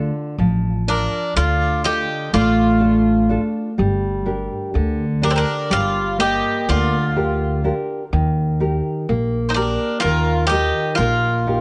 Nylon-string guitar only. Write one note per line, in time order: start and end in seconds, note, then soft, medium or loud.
0.00 0.36 D3 medium
0.00 0.68 D4 medium
0.00 0.68 F4 soft
0.00 0.68 A4 medium
0.39 1.34 F3 medium
0.88 1.66 D4 soft
0.88 1.66 F4 soft
1.36 2.30 D3 medium
1.85 2.62 F4 soft
1.85 2.63 A4 medium
2.33 3.27 A3 medium
2.80 3.28 D4 medium
2.80 3.29 F4 soft
2.80 3.29 A4 medium
3.29 3.68 D4 medium
3.29 3.69 F4 soft
3.29 3.69 A4 medium
3.78 4.72 G3 medium
4.26 5.04 D4 medium
4.26 5.04 G4 soft
4.26 5.04 A#4 medium
4.74 5.68 D3 medium
5.22 6.00 D4 medium
5.22 6.00 G4 soft
5.22 6.00 A#4 medium
5.70 6.64 G3 medium
6.18 6.96 A#3 medium
6.18 6.97 G4 soft
6.18 6.97 A#4 medium
6.69 7.62 D3 medium
7.16 7.63 D4 medium
7.16 7.64 G4 soft
7.16 7.64 A#4 medium
7.64 8.03 D4 medium
7.64 8.03 G4 soft
7.64 8.03 A#4 medium
8.13 9.05 D#3 medium
8.60 9.37 D#4 medium
8.60 9.37 G4 soft
8.60 9.37 A#4 medium
9.09 10.01 A#3 medium
9.56 10.32 G4 soft
9.56 10.33 A#4 medium
10.04 10.96 D#3 medium
10.51 11.27 D#4 medium
10.51 11.27 G4 medium
10.51 11.27 A#4 medium
10.99 11.61 A#3 medium
11.47 11.61 D#4 medium
11.47 11.61 G4 soft
11.47 11.61 A#4 medium